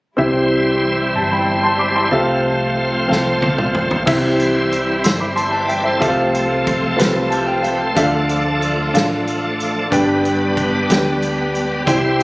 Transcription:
0.17 C2 C3 E3 G3 C4 E4 G4 C5 E5
1.15 G1 A5
1.32 G5 B5
1.63 A5 C6
1.79 B5 D6
1.95 A5 C6
2.11 C2 C3 F3 A3 C4 F4 A4 C5 E5
2.20 F5
3.08 C2 C4 F4 A4 F5, snare
3.42 high tom
3.58 mid tom
3.75 mid tom
3.91 floor tom
4.05 C2 C3 E3 G3 C4 D#4 E4 G4 C5 E5, kick, crash
4.13 E4
4.40 closed hi-hat
4.72 closed hi-hat
5.04 G1 C6 E6, snare, closed hi-hat
5.20 B5 D6
5.36 C5 E5 A5 C6, closed hi-hat
5.51 B4 D5 A5
5.67 E5 G5, closed hi-hat
5.83 A4 C5 E5
6.00 C2 C3 F3 A3 C4 F4 A4 E5, kick, closed hi-hat
6.08 F5
6.34 closed hi-hat
6.67 kick, closed hi-hat
6.96 C2 C4 F4 G4 B4, closed hi-hat
7.02 A4, snare
7.30 E4 G4 A5, closed hi-hat
7.47 F4 A4 G5
7.62 G4 B4 F5, closed hi-hat
7.79 A4 C5
7.95 D2 D3 F3 A3 D4 F4 A4 E5, kick, closed hi-hat
8.03 F5
8.29 closed hi-hat
8.62 closed hi-hat
8.94 A1 D4 F4 A4 F5, snare, closed hi-hat
9.27 closed hi-hat
9.60 closed hi-hat
9.91 G1 G2 G3 B3 D4 G4 B4 G5, kick, closed hi-hat
10.25 closed hi-hat
10.57 kick, closed hi-hat
10.89 D2 D4 G4 A4 G5, snare, closed hi-hat
10.97 B4
11.22 closed hi-hat
11.55 closed hi-hat
11.86 C2 C3 G3 C4 E4 G4 C5 G5, kick, closed hi-hat

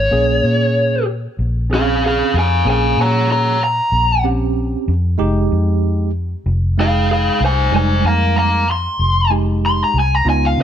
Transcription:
Already playing: C#5
0.11 A#1 A#3 C#4 G#4
0.44 A#2
1.39 A#1
1.70 C4 C#4 G#4
1.74 G#4 F5
2.06 G#4 F5
2.34 F2
2.39 F5 G#5
2.65 A#1 A#3 C#4 G#4
2.70 F5 G#5
2.97 A#2
3.01 C#5 A#5
3.32 C#5 A#5
3.64 A#5
3.92 A#1
4.24 C4 C#4 G4
4.88 F2
5.18 F1 G#3 D#4 G4
5.52 F2
6.46 F1
6.77 G#3 D#4 G#4 F5 G5
7.11 G#4 F5
7.41 C2
7.45 C5 G#5
7.72 F1 G3 G#3 D#4
7.76 C5 G#5
8.04 F2 F5 A#5
8.38 F5 A#5
8.71 C6
8.99 F1
9.30 G#3 D#4 G4
9.66 C6
9.84 A#5
9.94 C2
9.99 G#5
10.15 A#5
10.25 C#2 B3 D#4 F4
10.30 G#5
10.46 F5
10.57 C#3

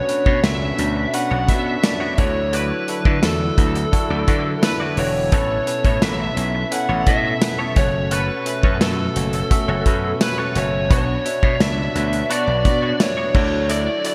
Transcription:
Already playing: B2 B3 C#4 D4 F#4 B4 C#5
0.09 C#4 D4 F#4 B4, muted clean electric guitar stroke, closed hi-hat
0.26 B2 B3 D4 F#4 C#5, kick
0.44 C#2 C#4 D4 F#4 A4 E5, muted clean electric guitar stroke, snare, closed hi-hat, tambourine
0.61 muted clean electric guitar stroke
0.79 D2 C#4 D4 F#4 B4, closed hi-hat
0.96 muted clean electric guitar stroke
1.13 C#4 D4 F#4 B4 F#5, muted clean electric guitar stroke, closed hi-hat
1.31 B1 B3 D4 F#4 C#5
1.48 B2 C#4 D4 F#4 B4 E5, muted clean electric guitar stroke, kick, closed hi-hat
1.66 muted clean electric guitar stroke
1.83 C#4 D4 F#4 D5, muted clean electric guitar stroke, snare, closed hi-hat, tambourine
2.00 B3 D4 F#4 C#5
2.18 D2 D3 F#3 A3 D4 E4 F#4 A4 C#5 D5, kick, closed hi-hat
2.36 muted clean electric guitar stroke
2.53 A3 E4 F#4 B4 D5, closed hi-hat
2.88 D4 E4 F#4 A4, muted clean electric guitar stroke, closed hi-hat
3.05 D3 A3 E4 F#4 D5, kick
3.22 E2 D4 E4 F#4 A4, muted clean electric guitar stroke, snare, closed hi-hat, tambourine
3.41 muted clean electric guitar stroke
3.57 D2 D4 E4 F#4 B4, kick, closed hi-hat
3.75 muted clean electric guitar stroke, closed hi-hat
3.92 D4 E4 F#4 A4, muted clean electric guitar stroke, kick, closed hi-hat
4.10 D2 A3 E4 F#4 D5
4.27 D3 A3 D4 E4 F#4 B4 D5, kick, closed hi-hat
4.45 muted clean electric guitar stroke
4.62 D4 E4 F#4 A4 B4, muted clean electric guitar stroke, snare, closed hi-hat, tambourine
4.80 A3 E4 F#4 D5
4.97 E1 A3 D4 E4 F#4 A4 C#5 D5, open hi-hat
5.15 muted clean electric guitar stroke
5.32 A1 B2 B3 C#4 E4 A4 B4 C#5, kick, closed hi-hat
5.66 C#4 E4 A4 B4, muted clean electric guitar stroke, closed hi-hat
5.84 A2 B3 E4 A4 C#5, kick, closed hi-hat
6.01 A1 C#4 E4 A4 B4 E5, muted clean electric guitar stroke, snare, closed hi-hat, tambourine
6.20 muted clean electric guitar stroke
6.36 B1 C#4 E4 A4 C#5, closed hi-hat
6.55 muted clean electric guitar stroke
6.71 C#4 E4 A4 B4 F#5, muted clean electric guitar stroke, closed hi-hat
6.89 A1 B3 E4 A4 C#5
7.06 A2 C#4 E4 A4 C#5 E5, kick, closed hi-hat
7.24 muted clean electric guitar stroke
7.41 C#4 E4 A4 B4, muted clean electric guitar stroke, snare, closed hi-hat, tambourine
7.59 B3 E4 A4 C#5
7.76 F#1 A3 C#4 F#4 G#4 A4 C#5, kick, closed hi-hat
7.83 A4
7.94 muted clean electric guitar stroke
8.11 C#4 F#4 A4 B4 C#5, closed hi-hat
8.46 C#4 F#4 A4 E5, muted clean electric guitar stroke, closed hi-hat
8.63 F#2 C#4 F#4 A4 C#5, kick
8.81 F#2 C#4 F#4 A4 B4, muted clean electric guitar stroke, snare, closed hi-hat, tambourine
8.99 muted clean electric guitar stroke
9.16 F#1 C#4 F#4 A4 C#5, closed hi-hat
9.33 muted clean electric guitar stroke, closed hi-hat
9.51 C#4 F#4 A4 E5, muted clean electric guitar stroke, kick, closed hi-hat
9.68 F#1 C#4 F#4 A4 C#5
9.85 F#2 C#4 F#4 A4 B4, muted clean electric guitar stroke, kick, closed hi-hat
10.04 muted clean electric guitar stroke
10.21 C#4 F#4 A4 B4 C#5, muted clean electric guitar stroke, snare, closed hi-hat, tambourine
10.38 C#4 F#4 A4 C#5
10.55 F#1 C#4 F#4 A4 C#5 E5, closed hi-hat
10.73 muted clean electric guitar stroke
10.90 B1 B3 D4 F#4 B4 C#5, kick, closed hi-hat
11.25 D4 F#4 B4 E5, muted clean electric guitar stroke, closed hi-hat
11.43 B2 B3 D4 F#4 C#5, kick
11.60 C#2 D4 F#4 B4 D5 E5, muted clean electric guitar stroke, snare, closed hi-hat, tambourine
11.78 muted clean electric guitar stroke
11.95 D2 D4 F#4 B4 C#5, closed hi-hat
12.13 muted clean electric guitar stroke, closed hi-hat
12.30 B3 D4 F#4 B4 C#5 D5, closed hi-hat
12.47 B1, muted clean electric guitar stroke
12.65 B2 D4 F#4 B4 D5, muted clean electric guitar stroke, kick, closed hi-hat
12.82 B3 D4 F#4 C#5
13.00 D4 F#4 B4 C#5 E5, muted clean electric guitar stroke, snare, closed hi-hat, tambourine
13.17 B3 D4 F#4 C#5
13.34 D2 D3 F#3 A3 D4 E4 F#4 A4 D5, kick, crash
13.52 muted clean electric guitar stroke
13.69 A3 E4 F#4 D5, closed hi-hat
14.04 E4 F#4 A4 D5, muted clean electric guitar stroke, closed hi-hat

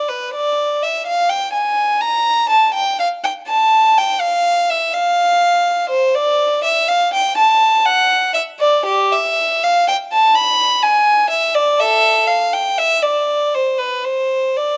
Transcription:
0.08 B4
0.34 D5
0.83 E5
1.07 F5
1.29 G5
1.53 G#5
2.01 A#5
2.49 A5
2.74 G5
3.00 F5
3.24 G5
3.48 A5
3.98 G5
4.21 F5
4.70 E5
4.94 F5
5.90 C5
6.15 D5
6.64 E5
6.89 F5
7.14 G5
7.38 A5
7.86 F#5
8.34 E5
8.60 D5
8.86 G4
9.12 E5
9.64 F5
9.88 G5
10.12 A5
10.35 B5
10.83 G#5
11.30 E5
11.55 D5
11.80 A4 E5
12.28 F5
12.53 G5
12.78 E5
13.03 D5
13.55 C5
13.79 B4
14.05 C5
14.56 D5

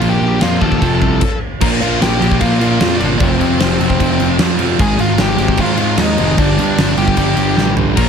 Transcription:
Already playing: F5
0.00 A#1 A#2 F3 A#3, crash
0.09 G4 G5
0.21 A#1
0.39 F2 A#2 F3 A#3 F4 F5, snare, crash
0.60 D#2 A#2 F3 A#3 A4 A5, kick
0.72 kick
0.81 F1 F2 C3 F3, kick, crash
1.02 C2, kick
1.21 kick, crash
1.61 A#1 A#2 F3 A#3 A#4 A#5, kick, crash
1.80 A#1 A#2 F3 A#3 F4 F5, crash
2.00 A#1 A#2 F3 A#3 G5, snare, crash
2.04 G4
2.19 A#1 A#2 F3 A#3, crash
2.32 kick
2.40 A#2 F3 A#3 F4 F5, kick, crash
2.59 A#2 F3 A#3 F5, crash
2.64 F4
2.80 F2 A#2 F3 A#3, snare, crash
2.98 G1 A#2 F3 A#3 D5, crash
3.03 D4
3.18 F1 F2 C3 F3 C5, kick, crash
3.23 C4
3.38 F2 C3 F3, crash
3.58 F1 F2 C3 F3 C5, snare, crash
3.63 C4
3.80 F1 F2 C3 F3, crash
3.90 kick
4.00 F1 F2 C3 F3, kick, crash
4.19 F1 F2 C3 F3, crash
4.39 F2 C3 F3, snare, crash
4.58 F2 C3 F3, crash
4.79 G#1 G#2 D#3 G#3 G#4 G#5, kick, crash
4.99 G#1 G#2 D#3 G#3 F4 F5, crash
5.17 G#1 G#2 D#3 G#3 G4 G5, snare, crash
5.37 G#1 G#2 D#3 G#3, crash
5.48 kick
5.57 G#2 D#3 G#3 F4 F5, kick, crash
5.77 G#2 D#3 G#3, crash
5.97 D#2 G#2 D#3 G#3 D#4 D#5, snare, crash
6.18 F1 G#2 D#3 G#3, crash
6.37 G1 G2 D3 G3 D4 D5, kick, crash
6.57 G2 D3 G3, crash
6.76 G1 G2 D3 G3, snare, crash
6.95 G1 G2 D3 G3 G4 G5, crash
7.08 kick
7.17 G1 G2 D3 G3, kick, crash
7.36 G1 G2 D3 G3, crash
7.56 A1 G2 D3 G3, snare
7.77 G2 D3 G3, floor tom
7.96 A#1 A#2 F3 A#3 A#4 A#5, kick, crash

